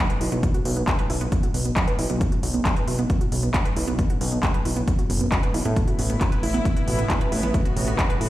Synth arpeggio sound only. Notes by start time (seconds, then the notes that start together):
0.10 B4
0.21 E4
0.32 B3
0.43 B3
0.54 F#4
0.65 B2
0.77 B3
0.88 F#3
0.99 B4
1.10 E4
1.21 B3
1.32 B3
1.43 F#4
1.54 B2
1.65 B3
1.76 F#3
1.88 B4
1.99 E4
2.10 B3
2.21 B3
2.32 F#4
2.43 B2
2.54 B3
2.65 F#3
2.76 B4
2.88 E4
2.99 B3
3.10 B3
3.21 F#4
3.32 B2
3.43 B3
3.54 F#3
3.65 B4
3.77 E4
3.88 B3
3.99 B3
4.10 F#4
4.21 B2
4.32 B3
4.43 F#3
4.54 B4
4.65 E4
4.76 B3
4.88 B3
4.99 F#4
5.10 B2
5.21 B3
5.32 F#3
5.43 B4
5.54 E4
5.65 B3
5.76 B3
5.88 F#4
5.99 B2
6.10 B3
6.21 F#3
6.32 B4
6.43 E4
6.54 B3
6.65 B3
6.76 F#4
6.88 B2
6.99 B3
7.10 F#3
7.21 B4
7.32 E4
7.43 B3
7.54 B3
7.65 F#4
7.76 B2
7.88 B3
7.99 F#3
8.10 B4
8.21 E4